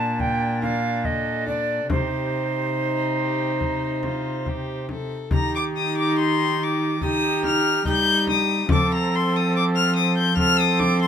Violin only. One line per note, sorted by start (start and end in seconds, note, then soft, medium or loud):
0.00 1.07 A#4 medium
1.05 1.91 A4 medium
1.92 2.67 G4 soft
2.77 3.17 D#4 medium
3.21 3.62 G4 medium
3.62 4.04 D#4 medium
4.05 4.49 F4 medium
4.48 4.90 G4 medium
4.91 5.32 A4 medium
5.33 5.53 A#5 medium
5.55 5.63 D6 medium
5.77 5.96 D#6 medium
5.98 6.18 D6 medium
6.19 6.64 C6 loud
6.63 7.03 D6 medium
7.04 7.44 D#6 medium
7.46 7.86 F6 loud
7.88 8.28 G6 loud
8.30 8.70 D#6 loud
8.72 8.91 D6 loud
8.95 9.17 A#5 loud
9.15 9.38 C6 medium
9.36 9.55 D#6 medium
9.56 9.64 D6 loud
9.76 9.96 F6 loud
9.96 10.16 D#6 medium
10.18 10.37 G6 medium
10.38 10.60 F6 loud
10.59 10.81 D#6 loud
10.79 11.00 D6 loud
11.02 11.07 C6 loud